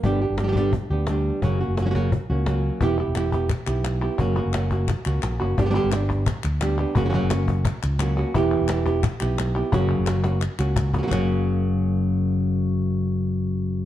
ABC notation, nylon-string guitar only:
X:1
M:4/4
L:1/8
Q:1/4=173
K:none
V:1 name="Nylon-string guitar"
[D,G,B,DG] [B,DG] [B,DG] [D,G,B,DG] z [B,DG] [G,B,DG]2 | [^C,^F,^A,^C^F] [A,CF] [A,CF] [C,F,A,CF] z [A,CF] [F,A,CF]2 | [E,B,EG] [B,EG] [E,B,EG] [B,EG] z [B,EG]2 [B,EG] | [^C,^F,^A,^C^F] [A,CF] [F,A,CF] [A,CF] z [A,CF]2 [A,CF] |
[D,G,B,DG] [D,G,B,DG] [B,DG]2 z2 [G,B,DG] [B,DG] | [^C,^F,^A,^C^F] [C,F,A,CF] [A,CF]2 z2 [F,A,CF] [A,CF] | [E,B,EG]2 [E,B,EG] [B,EG] z [B,EG]2 [B,EG] | [^C,^F,^A,^C^F]2 [F,A,CF] [A,CF] z [A,CF]2 [A,CF] |
[^F,,^C,^F,^A,^C^F]8- | [^F,,^C,^F,^A,^C^F]8 |]